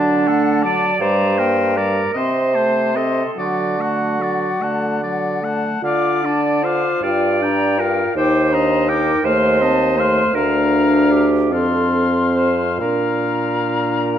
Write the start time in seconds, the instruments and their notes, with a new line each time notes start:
Already playing: bassoon D3, french horn F#3, clarinet D4, oboe D5, flute A5
0.27 french horn A3, oboe A4, flute F#5
0.62 french horn F#3, oboe D5, clarinet D5, flute A5
1.00 bassoon G2, french horn G3, clarinet C5, oboe D5, flute A#5
1.38 french horn A#3, oboe A#4, flute G5
1.76 french horn G3, clarinet A#4, oboe D5, flute A#5
2.14 bassoon C3, french horn C4, clarinet C5, oboe D#5, flute C6
2.54 french horn A3, oboe C5, flute A5
2.95 french horn C4, clarinet A4, oboe D#5, flute C6
3.36 bassoon D3, french horn F#3, clarinet F#4, oboe D5, flute F#5
3.79 french horn A3, oboe F#5, flute A5
4.19 french horn F#3, oboe D5, flute F#5
4.61 bassoon D3, french horn A3, oboe F#5, flute A5
5.02 french horn F#3, oboe D5, flute F#5
5.42 french horn A3, oboe F#5
5.46 flute A5
5.82 bassoon D3, french horn F4, clarinet D5, oboe F5, flute D6
6.24 french horn D4, oboe D5, flute A5
6.63 french horn F4, clarinet C5, oboe F5, flute D6
7.03 bassoon G2, french horn F4, clarinet D5, oboe F5, flute G5
7.41 french horn D4, oboe G5, flute A#5
7.78 french horn F4, clarinet A#4, oboe F5, flute G5
8.16 bassoon D#2, french horn D#4, clarinet C5, oboe G5, flute D6
8.52 french horn D4, oboe D#5, flute A#5
8.88 french horn D#4, clarinet A#4, oboe G5, flute D6
9.24 bassoon D#2, french horn A3, clarinet C5, oboe F5, flute C6
9.61 french horn C4, oboe D#5, flute A5
9.97 french horn A3, clarinet C5, oboe F5, flute C6
10.34 bassoon D2, french horn D4, clarinet A#4, oboe F5, flute A#5
11.12 clarinet G4
11.51 bassoon F2, french horn C4, clarinet A4, oboe F5, flute C6
12.36 clarinet C5
12.79 bassoon A#2, french horn D4, clarinet A#4, oboe F5, flute A#5
14.15 oboe F5